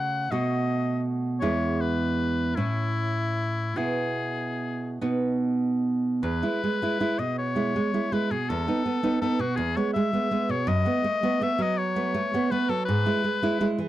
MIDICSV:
0, 0, Header, 1, 3, 480
1, 0, Start_track
1, 0, Key_signature, 4, "major"
1, 0, Tempo, 733496
1, 934, Time_signature, 6, 3, 24, 8
1, 934, Tempo, 765306
1, 1894, Tempo, 826446
1, 3334, Tempo, 783290
1, 4294, Tempo, 735294
1, 8786, End_track
2, 0, Start_track
2, 0, Title_t, "Oboe"
2, 0, Program_c, 0, 68
2, 0, Note_on_c, 0, 78, 81
2, 201, Note_on_c, 0, 75, 69
2, 211, Note_off_c, 0, 78, 0
2, 685, Note_off_c, 0, 75, 0
2, 918, Note_on_c, 0, 73, 80
2, 1173, Note_on_c, 0, 71, 67
2, 1182, Note_off_c, 0, 73, 0
2, 1641, Note_on_c, 0, 64, 73
2, 1651, Note_off_c, 0, 71, 0
2, 2364, Note_on_c, 0, 68, 65
2, 2373, Note_off_c, 0, 64, 0
2, 3091, Note_off_c, 0, 68, 0
2, 3822, Note_on_c, 0, 71, 80
2, 4414, Note_on_c, 0, 75, 78
2, 4424, Note_off_c, 0, 71, 0
2, 4535, Note_off_c, 0, 75, 0
2, 4539, Note_on_c, 0, 73, 80
2, 5027, Note_on_c, 0, 71, 80
2, 5037, Note_off_c, 0, 73, 0
2, 5149, Note_on_c, 0, 68, 69
2, 5158, Note_off_c, 0, 71, 0
2, 5267, Note_on_c, 0, 69, 80
2, 5277, Note_off_c, 0, 68, 0
2, 5731, Note_off_c, 0, 69, 0
2, 5735, Note_on_c, 0, 69, 82
2, 5860, Note_on_c, 0, 66, 74
2, 5870, Note_off_c, 0, 69, 0
2, 5962, Note_on_c, 0, 68, 83
2, 5972, Note_off_c, 0, 66, 0
2, 6095, Note_on_c, 0, 73, 75
2, 6105, Note_off_c, 0, 68, 0
2, 6203, Note_off_c, 0, 73, 0
2, 6207, Note_on_c, 0, 76, 86
2, 6580, Note_on_c, 0, 73, 82
2, 6590, Note_off_c, 0, 76, 0
2, 6696, Note_on_c, 0, 75, 98
2, 6705, Note_off_c, 0, 73, 0
2, 7180, Note_on_c, 0, 76, 96
2, 7190, Note_off_c, 0, 75, 0
2, 7305, Note_on_c, 0, 75, 85
2, 7315, Note_off_c, 0, 76, 0
2, 7411, Note_on_c, 0, 73, 86
2, 7421, Note_off_c, 0, 75, 0
2, 7889, Note_on_c, 0, 71, 87
2, 7898, Note_off_c, 0, 73, 0
2, 8009, Note_on_c, 0, 69, 80
2, 8019, Note_off_c, 0, 71, 0
2, 8108, Note_off_c, 0, 69, 0
2, 8112, Note_on_c, 0, 71, 94
2, 8651, Note_off_c, 0, 71, 0
2, 8786, End_track
3, 0, Start_track
3, 0, Title_t, "Nylon-string guitar"
3, 0, Program_c, 1, 24
3, 0, Note_on_c, 1, 49, 64
3, 0, Note_on_c, 1, 57, 45
3, 0, Note_on_c, 1, 66, 48
3, 184, Note_off_c, 1, 57, 0
3, 186, Note_off_c, 1, 66, 0
3, 191, Note_off_c, 1, 49, 0
3, 206, Note_on_c, 1, 47, 64
3, 209, Note_on_c, 1, 57, 41
3, 210, Note_on_c, 1, 66, 40
3, 907, Note_off_c, 1, 57, 0
3, 907, Note_off_c, 1, 66, 0
3, 910, Note_off_c, 1, 47, 0
3, 928, Note_on_c, 1, 56, 50
3, 932, Note_on_c, 1, 40, 66
3, 934, Note_on_c, 1, 64, 47
3, 1623, Note_off_c, 1, 56, 0
3, 1625, Note_off_c, 1, 64, 0
3, 1628, Note_off_c, 1, 40, 0
3, 1652, Note_on_c, 1, 45, 55
3, 1652, Note_on_c, 1, 61, 45
3, 1655, Note_on_c, 1, 64, 37
3, 2347, Note_off_c, 1, 61, 0
3, 2348, Note_off_c, 1, 64, 0
3, 2350, Note_off_c, 1, 45, 0
3, 2360, Note_on_c, 1, 47, 52
3, 2363, Note_on_c, 1, 59, 42
3, 2367, Note_on_c, 1, 64, 43
3, 3067, Note_off_c, 1, 47, 0
3, 3067, Note_off_c, 1, 59, 0
3, 3070, Note_off_c, 1, 64, 0
3, 3088, Note_on_c, 1, 59, 39
3, 3091, Note_on_c, 1, 47, 54
3, 3092, Note_on_c, 1, 63, 40
3, 3800, Note_off_c, 1, 59, 0
3, 3802, Note_off_c, 1, 63, 0
3, 3803, Note_off_c, 1, 47, 0
3, 3819, Note_on_c, 1, 40, 66
3, 3937, Note_off_c, 1, 40, 0
3, 3940, Note_on_c, 1, 56, 40
3, 3943, Note_on_c, 1, 64, 44
3, 4048, Note_off_c, 1, 56, 0
3, 4049, Note_off_c, 1, 64, 0
3, 4068, Note_on_c, 1, 56, 47
3, 4175, Note_off_c, 1, 56, 0
3, 4183, Note_on_c, 1, 56, 55
3, 4188, Note_on_c, 1, 64, 53
3, 4284, Note_off_c, 1, 56, 0
3, 4287, Note_off_c, 1, 64, 0
3, 4293, Note_on_c, 1, 56, 49
3, 4297, Note_on_c, 1, 64, 53
3, 4402, Note_off_c, 1, 56, 0
3, 4404, Note_off_c, 1, 64, 0
3, 4414, Note_on_c, 1, 47, 52
3, 4654, Note_on_c, 1, 56, 46
3, 4658, Note_on_c, 1, 64, 53
3, 4764, Note_off_c, 1, 56, 0
3, 4766, Note_off_c, 1, 64, 0
3, 4786, Note_on_c, 1, 56, 55
3, 4801, Note_off_c, 1, 47, 0
3, 4896, Note_off_c, 1, 56, 0
3, 4904, Note_on_c, 1, 56, 42
3, 4907, Note_on_c, 1, 64, 49
3, 5009, Note_off_c, 1, 56, 0
3, 5010, Note_off_c, 1, 64, 0
3, 5023, Note_on_c, 1, 56, 50
3, 5028, Note_on_c, 1, 64, 52
3, 5128, Note_off_c, 1, 56, 0
3, 5130, Note_off_c, 1, 64, 0
3, 5146, Note_on_c, 1, 47, 51
3, 5260, Note_off_c, 1, 47, 0
3, 5270, Note_on_c, 1, 40, 72
3, 5378, Note_off_c, 1, 40, 0
3, 5387, Note_on_c, 1, 59, 45
3, 5390, Note_on_c, 1, 63, 45
3, 5488, Note_off_c, 1, 59, 0
3, 5490, Note_off_c, 1, 63, 0
3, 5503, Note_on_c, 1, 59, 50
3, 5610, Note_off_c, 1, 59, 0
3, 5617, Note_on_c, 1, 59, 53
3, 5621, Note_on_c, 1, 63, 58
3, 5724, Note_off_c, 1, 59, 0
3, 5725, Note_off_c, 1, 63, 0
3, 5739, Note_on_c, 1, 59, 52
3, 5747, Note_on_c, 1, 63, 57
3, 5845, Note_off_c, 1, 59, 0
3, 5849, Note_off_c, 1, 63, 0
3, 5853, Note_on_c, 1, 47, 60
3, 5972, Note_on_c, 1, 40, 67
3, 5975, Note_off_c, 1, 47, 0
3, 6091, Note_off_c, 1, 40, 0
3, 6097, Note_on_c, 1, 56, 46
3, 6101, Note_on_c, 1, 59, 49
3, 6205, Note_off_c, 1, 56, 0
3, 6207, Note_off_c, 1, 59, 0
3, 6224, Note_on_c, 1, 56, 55
3, 6328, Note_off_c, 1, 56, 0
3, 6335, Note_on_c, 1, 56, 48
3, 6340, Note_on_c, 1, 59, 45
3, 6443, Note_off_c, 1, 56, 0
3, 6445, Note_off_c, 1, 59, 0
3, 6453, Note_on_c, 1, 56, 54
3, 6458, Note_on_c, 1, 59, 55
3, 6562, Note_off_c, 1, 56, 0
3, 6564, Note_off_c, 1, 59, 0
3, 6571, Note_on_c, 1, 47, 55
3, 6687, Note_on_c, 1, 42, 73
3, 6693, Note_off_c, 1, 47, 0
3, 6806, Note_on_c, 1, 57, 45
3, 6807, Note_off_c, 1, 42, 0
3, 6811, Note_on_c, 1, 59, 53
3, 6918, Note_off_c, 1, 57, 0
3, 6920, Note_off_c, 1, 59, 0
3, 6930, Note_on_c, 1, 57, 49
3, 7044, Note_off_c, 1, 57, 0
3, 7052, Note_on_c, 1, 57, 52
3, 7056, Note_on_c, 1, 59, 61
3, 7161, Note_off_c, 1, 57, 0
3, 7163, Note_off_c, 1, 59, 0
3, 7172, Note_on_c, 1, 57, 58
3, 7176, Note_on_c, 1, 59, 58
3, 7281, Note_off_c, 1, 57, 0
3, 7284, Note_off_c, 1, 59, 0
3, 7285, Note_on_c, 1, 54, 58
3, 7528, Note_on_c, 1, 57, 51
3, 7531, Note_on_c, 1, 59, 59
3, 7641, Note_off_c, 1, 57, 0
3, 7642, Note_off_c, 1, 59, 0
3, 7650, Note_on_c, 1, 57, 59
3, 7676, Note_off_c, 1, 54, 0
3, 7769, Note_off_c, 1, 57, 0
3, 7776, Note_on_c, 1, 57, 54
3, 7781, Note_on_c, 1, 59, 53
3, 7885, Note_off_c, 1, 57, 0
3, 7886, Note_off_c, 1, 59, 0
3, 7891, Note_on_c, 1, 57, 55
3, 7895, Note_on_c, 1, 59, 60
3, 8001, Note_off_c, 1, 57, 0
3, 8003, Note_off_c, 1, 59, 0
3, 8007, Note_on_c, 1, 54, 56
3, 8130, Note_off_c, 1, 54, 0
3, 8134, Note_on_c, 1, 44, 76
3, 8246, Note_on_c, 1, 56, 50
3, 8250, Note_off_c, 1, 44, 0
3, 8250, Note_on_c, 1, 64, 56
3, 8358, Note_off_c, 1, 56, 0
3, 8359, Note_off_c, 1, 64, 0
3, 8366, Note_on_c, 1, 56, 61
3, 8479, Note_off_c, 1, 56, 0
3, 8486, Note_on_c, 1, 56, 62
3, 8491, Note_on_c, 1, 64, 63
3, 8595, Note_off_c, 1, 56, 0
3, 8598, Note_off_c, 1, 64, 0
3, 8603, Note_on_c, 1, 56, 60
3, 8606, Note_on_c, 1, 64, 67
3, 8716, Note_off_c, 1, 56, 0
3, 8718, Note_off_c, 1, 64, 0
3, 8720, Note_on_c, 1, 52, 61
3, 8786, Note_off_c, 1, 52, 0
3, 8786, End_track
0, 0, End_of_file